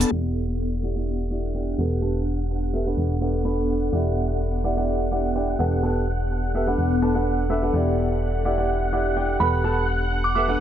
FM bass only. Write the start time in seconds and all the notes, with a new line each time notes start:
0.12 E1
1.78 E1
2.97 E1
3.93 E1
5.59 E1
6.78 E1
7.74 E1
9.40 E1